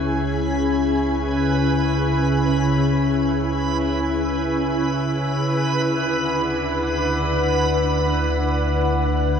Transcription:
Already playing: C#2 C#3 C#4 E4 G#4 B4 G#5 B5
5.44 D2 D3
5.52 D4 B4
5.73 F#5

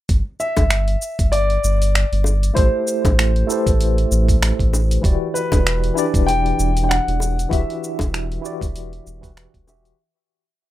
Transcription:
0.09 G1, kick, open hi-hat, shaker
0.40 E5, shaker
0.57 G1, kick, open hi-hat, high bongo, shaker
0.70 finger snap, open hi-hat, shaker
0.88 open hi-hat
1.02 shaker
1.19 G1, kick, open hi-hat, shaker
1.32 D5, open hi-hat, shaker
1.50 open hi-hat
1.64 G1, shaker
1.82 open hi-hat, shaker
1.95 finger snap, open hi-hat, shaker
2.12 G1, open hi-hat
2.24 high bongo, shaker
2.43 open hi-hat, shaker
2.54 A1 A3 E4 G4 A4 C5, kick, open hi-hat, shaker
2.58 C5
2.87 shaker
3.05 A1, kick, open hi-hat, high bongo, shaker
3.19 finger snap, open hi-hat, shaker
3.36 open hi-hat
3.47 A3 E4 G4 A4 B4, shaker
3.52 C5
3.66 A1, kick, open hi-hat, shaker
3.81 open hi-hat, shaker
3.98 open hi-hat
4.11 A1, shaker
4.29 kick, open hi-hat, shaker
4.43 finger snap, open hi-hat, shaker
4.59 A1, kick, open hi-hat
4.73 high bongo, shaker
4.91 open hi-hat, shaker
5.02 E1 E3 E4 F#4 G4, kick, open hi-hat, shaker
5.06 D5
5.34 B4, shaker
5.52 E1, kick, open hi-hat, high bongo, shaker
5.67 finger snap, open hi-hat, shaker
5.84 open hi-hat
5.94 E3 D4 E4 G4, shaker
5.99 D5
6.14 E1, kick, open hi-hat, shaker
6.26 G5, open hi-hat, shaker
6.46 open hi-hat
6.59 E1, shaker
6.77 open hi-hat, shaker
6.83 G5
6.89 F#5, finger snap, open hi-hat, shaker
7.08 E1, open hi-hat
7.20 high bongo, shaker
7.39 open hi-hat, shaker
7.49 E1 E3 E4 F#4 G4 E5, kick
7.53 E5, open hi-hat, shaker
7.70 open hi-hat
7.84 shaker
7.99 E1, kick, open hi-hat, high bongo, shaker
8.14 finger snap, open hi-hat, shaker
8.32 open hi-hat
8.41 E3 E4 F#4 G4, shaker
8.46 D5
8.61 E1, kick, open hi-hat, shaker
8.76 open hi-hat, shaker
8.93 open hi-hat
9.07 E1, shaker
9.22 E3 E4 F#4 G4 B4, kick, open hi-hat, shaker
9.37 finger snap, open hi-hat, shaker
9.54 E1, kick, open hi-hat
9.67 E3 E4 F#4 G4 E5, high bongo, shaker
9.85 open hi-hat, shaker

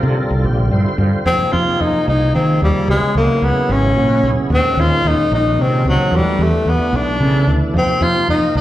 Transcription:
Already playing: D3 G3 C4 F4 A#4
0.03 C3 A4
0.17 D3 G3 C4 F4 A4 A#4
0.30 C2 A4
0.44 A#1 G4
0.60 F4
0.71 G2 D3 G3 C4 F4 C5
0.75 E4
0.98 G2 D3 G3 C4 F4 C5
1.12 muted fretless electric bass stroke
1.25 F2 C3 F3 A#3 C4 D#4 G#4
1.39 muted fretless electric bass stroke
1.52 F2 C3 F3 A#3 D#4 F4 G#4
1.79 F2 C3 F3 A#3 D#4 G#4
1.95 muted fretless electric bass stroke
2.08 C2 D#4
2.33 C3 D#3 F3 A#3 C4 D#4 G#4
2.61 D#2 C3 F3 G3 A#3 D#4 G#4
2.87 C#2 C#3 F#3 G#3 B3 E4 G#4
3.14 C#2 C#3 F#3 A#3 B3 E4 F#4
3.41 C#2 C#3 F#3 B3 E4 G#4
3.56 muted fretless electric bass stroke
3.69 G#1 C#4
3.96 A#2 C#3 F#3 B3 E4 F#4
4.23 B1 C#3 F#3 B3 E4 G#4
4.37 muted fretless electric bass stroke
4.50 D#2 A#2 D#3 G#3 C4 C#4 F#4
4.64 muted fretless electric bass stroke
4.77 D#2 A#2 D#3 G#3 C#4 D#4 F4
5.04 D#2 A#2 D#3 G#3 C#4 D#4 F#4
5.18 muted fretless electric bass stroke
5.32 A#1 D#4
5.59 A#2 C3 D#3 G#3 C4 C#4 F4
5.85 C#2 A#2 D#3 F#3 G#3 C#4 D#4
5.99 muted fretless electric bass stroke
6.11 E2 B2 E3 A3 D4 F#4
6.16 G3
6.26 muted fretless electric bass stroke
6.39 E2 B2 E3 A3 D4 F#4
6.43 A3
6.66 E2 B2 E3 A3 B3 D4 F#4
6.79 muted fretless electric bass stroke
6.93 B1 D4
7.20 B2 C#3 E3 A3 D4 A4
7.47 D2 B2 E3 A3 D4 E4
7.61 muted fretless electric bass stroke
7.74 F2 C3 F3 A#3 D#4 G4
7.78 C4
7.87 muted fretless electric bass stroke
8.01 F2 C3 F3 A#3 D#4 F4 G4
8.28 F2 C3 F3 A#3 D#4 A#4
8.41 muted fretless electric bass stroke
8.55 C2 D#4

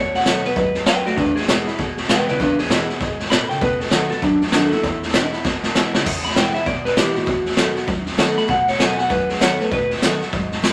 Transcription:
Already playing: B2 C#5
0.14 F#5, snare
0.20 snare
0.26 D#3 F#3 A3 B3 F#4 C#5, snare, hi-hat pedal
0.45 B3 F#4 B4, snare
0.56 G#2 F#3 B4, kick, snare
0.74 snare
0.86 F#2 F#3 B4 G5, snare, hi-hat pedal
1.06 A3 F#4 D5, snare
1.16 E2 D4 B4, kick, snare
1.36 G#4, snare
1.42 snare
1.48 B2 E3 G#3 B3 E4, snare, hi-hat pedal
1.67 B3 E4, snare
1.78 B2, kick, snare
1.97 snare
2.03 snare
2.09 B2 E3 G#3 B3 E4 B4 G5, snare, hi-hat pedal
2.28 C#3 B3 E4 B4 D5, snare
2.40 E2 D4 B4, kick, snare
2.58 G#4, snare
2.65 snare
2.69 B2 E3 G#3 B3 E4, snare, hi-hat pedal
2.89 B3 E4, snare
3.00 G#2 B2, kick, snare
3.20 snare
3.25 snare
3.30 A2 B2 B5, snare, hi-hat pedal
3.49 C#3 G5, snare
3.61 B2 B4, kick, snare
3.80 A4, snare
3.86 snare
3.90 D#3 F#3 A3 B3 F#4 B4, snare, hi-hat pedal
4.10 B3 F#4 A4, snare
4.22 F#2 F#3 D4, kick, snare
4.41 snare
4.47 snare
4.52 D#3 F#3 A3 B3 D4 F#4, snare, hi-hat pedal
4.71 D#2 B3 E4 F#4, snare
4.83 E2, kick, snare
5.03 snare
5.08 snare
5.13 B2 E3 G#3 B3 E4, snare, hi-hat pedal
5.32 B3 E4, snare
5.45 B2, kick, snare
5.63 snare
5.75 B2 E3 G#3 B3 E4, snare, hi-hat pedal
5.94 C#3, snare
6.06 E2, kick, snare, crash
6.25 B5, snare
6.31 snare
6.36 B2 E3 G#3 B3 E4 G5, snare, hi-hat pedal
6.54 B3 E4 E5, snare
6.66 B2 D5, kick, snare
6.85 B4, snare
6.96 B2 E3 G#3 B3 E4 G4, snare, hi-hat pedal
7.16 A#2 F#4, snare
7.26 B2, kick, snare
7.45 snare
7.51 snare
7.57 D#3 F#3 A3 B3 F#4, snare, hi-hat pedal
7.75 B3 F#4, snare
7.87 F#2 F#3, kick, snare
8.06 snare
8.12 snare
8.18 D#3 F#3 A3 B3 F#4, snare, hi-hat pedal
8.37 A3 B3 F#4 B5, snare
8.48 B2 F#5, kick, snare
8.67 C#5, snare
8.73 snare
8.79 D#3 F#3 A3 B3 F#4 G#5, snare, hi-hat pedal
8.97 B3 F#4 F#5, snare
9.10 F#2 F#3 B4, kick, snare
9.29 G#4, snare
9.35 snare
9.39 D#3 F#3 A3 B3 F#4 C#5, snare, hi-hat pedal
9.59 A3 B3 F#4 B4, snare
9.71 B2 B4, kick, snare
9.91 snare
9.96 snare
10.02 D#3 F#3 A3 B3 F#4, snare, hi-hat pedal
10.21 B3 F#4, snare
10.33 G#2 F#3, kick, snare
10.52 snare
10.62 F#2 F#3, snare, hi-hat pedal

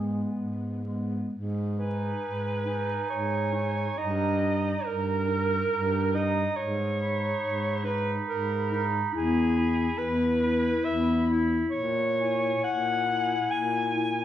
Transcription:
Already playing: G#2 G#3 B3 G#4
0.36 G#2
0.84 G#3 B3
1.33 G#2
1.77 D#4 B4 G#5
2.23 G#2
2.66 D#4 G#5
3.10 G#2 C#5
3.53 D#4 G#5
3.97 G2 D#4 D#5 A#5
4.41 D#4 A#5
4.85 G2 A#4
5.28 D#4 A#5
5.72 G2
6.14 D#4 D#5 A#5
6.56 G#2 C#5
7.00 D#4 B5
7.42 G#2
7.84 D#4 B4 B5
8.28 G#2 A#4
8.71 D#4 B5
9.11 E2 E4 G#4 B5
9.56 E4 B5
9.98 E2 B4
10.40 E4 B5
10.85 E2 E5
11.27 E4 B5
11.70 A#2 C#5
12.18 E4 G#5
12.64 A#2 F#5
13.06 E4 G#5
13.51 A#2 G#5
13.93 E4 G#5

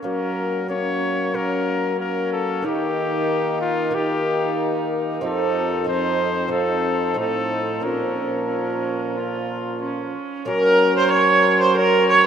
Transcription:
0.02 F#3 A#3 C#4 A#4
0.68 A#3 C#4 C#5
1.34 A#3 C#4 A#4
2.00 A#3 C#4 A#4
2.33 A4
2.62 D#3 A#3 D#4
2.67 G4
3.61 F4
3.91 A#3 D#4 G4
3.95 D#4
5.21 F2 F3 C4 D#4
5.25 A4
5.84 F3 C4 D#4 C5
6.48 C4 D#4
6.53 F3 A4
7.14 A2 C4 D#4
7.18 A2 F3 D#4 A4
7.80 A#2 A#3 C#4 A#4
7.85 A#2 F3
8.50 C#4
9.17 F4
9.81 C#4
10.45 F#3 A#3 C#4 A#4
10.97 C5
11.11 C#4 C#5
11.60 C5
11.77 C#4 A#4
12.10 C#5

